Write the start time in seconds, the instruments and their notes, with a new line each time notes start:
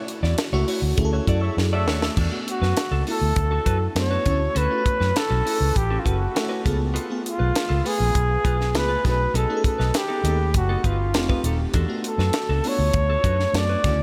Already playing: fm electric piano A3 C#4 E4 F#4
0.08 muted clean electric guitar stroke, closed hi-hat
0.23 fingered electric bass E2, clean electric guitar E4 F#4 D5, snare
0.38 muted clean electric guitar stroke, snare, closed hi-hat
0.52 fingered electric bass C#2, fm electric piano A3 C#4 E4 F#4, clean electric guitar E4 F#4 C#5
0.68 clean electric guitar E4 F#4 C#5, open hi-hat
0.82 fingered electric bass D2, muted clean electric guitar stroke
0.97 fingered electric bass D2, fm electric piano A3 C#4 E4 G#4, muted clean electric guitar stroke, kick, closed hi-hat
1.05 fm electric piano A4
1.13 clean electric guitar E4 F#4 C#5
1.27 fingered electric bass F#2, clean electric guitar E4 F#4 D5, kick, closed hi-hat
1.41 horn section A4 C#5 E5
1.57 fingered electric bass F#2, muted clean electric guitar stroke, snare
1.73 clean electric guitar E4 F#4 D5, horn section A4 C#5 E5
1.87 fingered electric bass D#2, clean electric guitar E4 F#4 C#5, snare
2.02 muted clean electric guitar stroke, snare
2.17 fingered electric bass E2, clean electric guitar D4 F#4 A4, kick, crash
2.32 fm electric piano A3 B3 D4 F#4
2.48 flugelhorn F#4, muted clean electric guitar stroke, closed hi-hat
2.62 fingered electric bass F#2, clean electric guitar D4 F#4 B4, snare
2.77 snare, closed hi-hat
2.91 fingered electric bass C#2, clean electric guitar D4 F#4 A4
3.07 fm electric piano A3 B3 D4 E4, clean electric guitar D4 F#4 A4, flugelhorn A4, open hi-hat
3.21 fingered electric bass D2, muted clean electric guitar stroke
3.36 fingered electric bass D2, muted clean electric guitar stroke, kick, closed hi-hat
3.51 clean electric guitar D4 F#4 A4
3.65 fingered electric bass F#2, clean electric guitar D4 F#4 B4, kick, closed hi-hat
3.81 muted clean electric guitar stroke
3.95 fingered electric bass F#2, fm electric piano A3 B3 D4 F#4, flugelhorn C#5, snare, closed hi-hat
4.11 clean electric guitar D4 F#4 B4
4.25 fingered electric bass D2, fm electric piano A3 C#4 E4 F#4, clean electric guitar C#4 F#4 A4, kick, closed hi-hat
4.40 muted clean electric guitar stroke
4.55 fingered electric bass D2, clean electric guitar C#4 F#4 A4, flugelhorn B4, closed hi-hat
4.70 fm electric piano A3 C#4 E4 F4
4.78 fm electric piano F#4
4.85 muted clean electric guitar stroke, kick, closed hi-hat
5.00 fingered electric bass F#2, clean electric guitar C#4 F#4 B4, snare
5.15 flugelhorn A4, muted clean electric guitar stroke, snare, closed hi-hat
5.30 fingered electric bass B1, clean electric guitar C#4 F#4 A4
5.45 fm electric piano A3 C#4 E4 G#4, clean electric guitar C#4 F#4 A4, open hi-hat
5.53 fm electric piano A4
5.60 fingered electric bass C#2, muted clean electric guitar stroke
5.75 fingered electric bass A1, flugelhorn G4, muted clean electric guitar stroke, kick, closed hi-hat
5.90 clean electric guitar C#4 F#4 A4
5.99 flugelhorn F4
6.05 fingered electric bass F#1, clean electric guitar C#4 F#4 B4, flugelhorn F#4, kick, closed hi-hat
6.19 muted clean electric guitar stroke
6.34 fm electric piano A3 C#4 E4 A4, muted clean electric guitar stroke, snare, closed hi-hat
6.49 clean electric guitar C#4 F#4 B4
6.64 fingered electric bass C#2, fm electric piano A3 B3 F4 G#4, clean electric guitar B3 F4 A4, kick, closed hi-hat
6.79 muted clean electric guitar stroke
6.94 clean electric guitar B3 F4 A4, closed hi-hat
7.10 fm electric piano A3 B3 F4 G#4
7.24 muted clean electric guitar stroke, closed hi-hat
7.29 flugelhorn F4
7.39 fingered electric bass B1, clean electric guitar B3 F4 B4
7.54 muted clean electric guitar stroke, snare, closed hi-hat
7.69 fingered electric bass C#2, clean electric guitar B3 F4 A4
7.84 fm electric piano A3 B3 F4 B4, clean electric guitar B3 F4 A4, flugelhorn G#4, open hi-hat
7.99 fingered electric bass A#1, muted clean electric guitar stroke
8.15 fingered electric bass B1, kick, closed hi-hat
8.29 muted clean electric guitar stroke
8.44 fingered electric bass B1, clean electric guitar B3 F4 B4, kick, closed hi-hat
8.59 muted clean electric guitar stroke, snare
8.74 fingered electric bass C#2, fm electric piano A3 B3 F4 G#4, flugelhorn B4, snare, closed hi-hat
8.88 clean electric guitar B3 F4 B4
9.04 fingered electric bass B1, fm electric piano A3 C#4 D#4 F#4, clean electric guitar B3 D#4 A4, flugelhorn B4, kick, snare, closed hi-hat
9.19 muted clean electric guitar stroke
9.34 fingered electric bass B1, clean electric guitar B3 D#4 A4, flugelhorn A4, closed hi-hat
9.49 fm electric piano A3 C#4 D#4 G#4
9.57 fm electric piano A4
9.64 flugelhorn A4, muted clean electric guitar stroke, kick, closed hi-hat
9.78 fingered electric bass B1, clean electric guitar B3 D#4 B4, snare
9.94 flugelhorn G4, snare, closed hi-hat
10.08 clean electric guitar B3 D#4 A4
10.24 fingered electric bass D#2, fm electric piano A3 C#4 D#4 G#4, clean electric guitar B3 D#4 A4, closed hi-hat
10.31 fm electric piano A4
10.39 muted clean electric guitar stroke
10.54 fingered electric bass F#1, flugelhorn F#4, muted clean electric guitar stroke, kick, closed hi-hat
10.69 clean electric guitar B3 D#4 A4
10.84 fingered electric bass G1, clean electric guitar B3 D#4 B4, flugelhorn F4, kick, closed hi-hat
10.99 muted clean electric guitar stroke
11.14 fingered electric bass F1, fm electric piano A3 C4 D#4 G4, muted clean electric guitar stroke, snare, closed hi-hat
11.29 clean electric guitar D#4 G4 B4, kick
11.44 fingered electric bass D#1, clean electric guitar D#4 G4 A4, closed hi-hat
11.60 muted clean electric guitar stroke
11.74 fingered electric bass E2, clean electric guitar D4 F#4 A4, kick, closed hi-hat
11.88 fm electric piano A3 B3 D4 F#4
12.04 flugelhorn A4, muted clean electric guitar stroke, closed hi-hat
12.18 fingered electric bass F#2, clean electric guitar D4 F#4 B4, snare
12.33 snare, closed hi-hat
12.49 fingered electric bass C#2, clean electric guitar D4 F#4 A4
12.64 fm electric piano A3 B3 D4 F4, clean electric guitar D4 F#4 A4, open hi-hat
12.68 fm electric piano F#4, flugelhorn C#5
12.79 fingered electric bass D2, muted clean electric guitar stroke
12.94 fingered electric bass D2, muted clean electric guitar stroke, kick, closed hi-hat
13.10 clean electric guitar D4 F#4 A4
13.24 fingered electric bass F#2, clean electric guitar D4 F#4 B4, kick, closed hi-hat
13.39 muted clean electric guitar stroke, snare
13.54 fingered electric bass F#2, fm electric piano A3 B3 D4 F#4, flugelhorn D5, muted clean electric guitar stroke, snare, closed hi-hat
13.69 clean electric guitar D4 F#4 B4
13.84 fingered electric bass D2, fm electric piano C#3 A3 E4 F#4, clean electric guitar C#4 F#4 A4, kick, snare, closed hi-hat